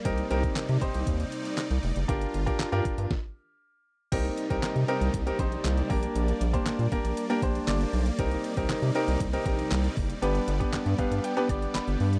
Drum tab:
CC |----------------|----------------|x---------------|----------------|
HH |xxxxxxxxxxxxxxox|xxxxxxxx--------|xxxxxxxxxxxxxxox|xxxxxxxxxxxxxxox|
CP |----x-------x---|----x-----------|----x-------x---|----x-------x---|
SD |----o-------o---|----o---o-------|----o-------o---|----o-------o---|
BD |o--o--o-o-------|o--o--o-o-------|o--o----o-o---o-|---o--o---o-----|

CC |----------------|----------------|
HH |xxxxxxxxxxxxxxox|xxxxxxxxxxxxxxox|
CP |----x-------x---|----x-------x---|
SD |----o-------o---|----o-------o---|
BD |o--o----o-o---o-|---o--o---o-----|